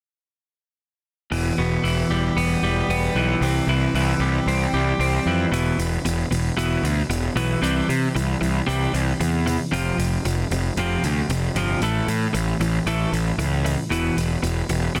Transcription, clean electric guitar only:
1.32 2.64 E2 medium
1.58 2.90 B2 medium
1.84 3.16 E3 medium
2.10 2.63 G3 medium
2.37 2.89 B3 medium
2.63 4.21 G3 medium
2.90 3.43 B3 medium
3.16 3.69 E3 medium
3.43 4.74 C3 medium
3.69 3.94 E3 medium
3.95 5.26 E3 medium
4.21 4.73 G3 soft
4.48 4.99 C4 medium
4.74 5.53 G3 medium
5.00 5.53 C4 medium
5.27 5.52 E3 medium
5.52 5.77 E2 medium
5.52 5.77 B2 medium
5.52 5.78 E3 medium
5.79 6.03 E2 soft
5.79 6.03 B2 medium
6.05 6.29 E2 medium
6.05 6.29 B2 medium
6.31 6.55 E2 medium
6.31 6.55 B2 medium
6.57 6.82 E2 medium
6.57 6.82 B2 medium
6.57 6.83 E3 medium
6.83 7.07 E2 soft
6.83 7.08 B2 medium
7.10 7.34 E2 medium
7.10 7.34 B2 medium
7.36 7.61 E2 medium
7.36 7.61 B2 medium
7.36 7.61 E3 medium
7.62 7.87 C3 medium
7.62 7.88 E3 medium
7.62 7.88 G3 medium
7.89 8.13 C3 medium
7.89 8.13 E3 medium
8.15 8.39 C3 medium
8.15 8.39 E3 medium
8.41 8.65 C3 soft
8.41 8.65 E3 medium
8.67 8.92 C3 medium
8.67 8.92 E3 medium
8.67 8.92 G3 medium
8.94 9.17 C3 medium
8.94 9.18 E3 medium
9.20 9.44 C3 medium
9.20 9.44 E3 medium
9.46 9.70 C3 soft
9.46 9.70 E3 medium
9.72 9.97 F2 medium
9.72 9.97 C3 medium
9.72 9.98 F3 medium
9.98 10.22 F2 medium
9.98 10.22 C3 medium
10.25 10.49 F2 medium
10.25 10.49 C3 medium
10.52 10.75 F2 medium
10.52 10.75 C3 medium
10.78 11.02 F2 medium
10.78 11.03 C3 medium
10.78 11.03 F3 medium
11.05 11.28 F2 medium
11.05 11.28 C3 medium
11.30 11.53 F2 medium
11.30 11.54 C3 medium
11.56 11.81 F2 medium
11.56 11.81 C3 medium
11.56 11.81 F3 medium
11.82 12.07 A2 medium
11.82 12.07 E3 medium
11.82 12.07 A3 medium
12.08 12.32 A2 soft
12.08 12.32 E3 medium
12.33 12.57 A2 medium
12.33 12.58 E3 medium
12.61 12.84 A2 soft
12.61 12.84 E3 medium
12.87 13.11 A2 medium
12.87 13.12 E3 medium
12.87 13.12 A3 medium
13.12 13.36 A2 medium
13.12 13.36 E3 medium
13.39 13.62 A2 medium
13.39 13.62 E3 medium
13.65 13.88 A2 medium
13.65 13.89 E3 medium
13.90 14.15 E2 medium
13.90 14.16 B2 medium
13.90 14.16 E3 medium
14.17 14.40 E2 medium
14.17 14.41 B2 medium
14.43 14.66 E2 medium
14.43 14.66 B2 medium
14.70 14.93 E2 soft
14.70 14.93 B2 medium
14.95 15.00 E2 medium
14.95 15.00 B2 medium
14.95 15.00 E3 medium

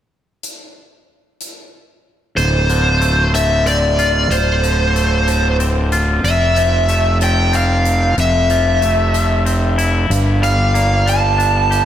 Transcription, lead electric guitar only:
2.37 3.34 C5 medium
3.35 3.67 E5 medium
3.67 4.33 D5 medium
4.32 5.56 C5 medium
6.25 7.17 E5 medium
7.24 7.55 G5 medium
7.56 8.15 F5 medium
8.20 9.44 E5 medium
10.43 11.09 F5 medium
11.09 11.85 A5 medium

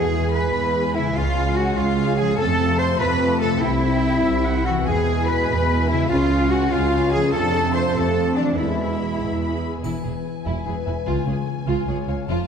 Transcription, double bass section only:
0.00 0.47 E2 medium
0.54 1.08 E2 medium
1.17 1.70 C#2 medium
1.77 2.31 C#2 medium
2.39 2.93 F2 medium
3.01 3.55 F2 medium
3.62 4.17 C2 medium
4.24 4.79 C2 medium
4.87 5.42 E2 medium
5.49 6.03 E2 medium
6.10 6.65 C#2 medium
6.72 7.26 C#2 medium
7.34 7.88 F2 medium
7.97 8.51 F2 medium
8.58 9.13 E2 medium
9.21 9.76 E2 medium
9.85 9.93 E1 soft
10.05 10.13 E1 soft
10.46 10.54 E1 soft
10.67 10.75 E1 soft
10.87 10.95 E1 soft
11.07 11.15 C#2 soft
11.27 11.35 C#2 soft
11.67 11.75 C#2 medium
11.87 11.95 C#2 soft
12.09 12.17 C#2 soft
12.29 12.37 F1 medium

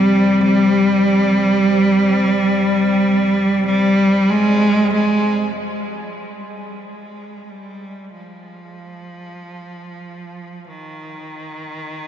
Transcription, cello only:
0.00 3.66 G3 medium
3.66 4.32 G3 loud
4.30 4.93 G#3 loud
4.93 5.54 G#3 loud
5.55 6.25 F3 medium
6.24 6.86 G3 medium
6.85 7.52 G#3 medium
7.50 8.13 G3 medium
8.13 10.70 F3 medium
10.69 12.07 D#3 medium

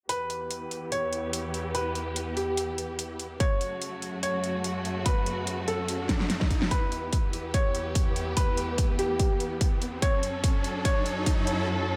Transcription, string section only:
0.09 3.37 E2 medium
0.09 3.37 E3 medium
0.09 3.37 B3 medium
0.09 3.37 G4 medium
3.40 6.68 F#2 medium
3.40 6.68 C#3 medium
3.40 6.68 A3 medium
3.40 6.68 F#4 medium
6.71 9.99 E2 medium
6.71 9.99 E3 medium
6.71 9.99 B3 medium
6.71 9.99 G4 medium
10.02 11.96 F#2 medium
10.02 11.96 F#3 medium
10.02 11.96 C#4 medium
10.02 11.96 A4 medium

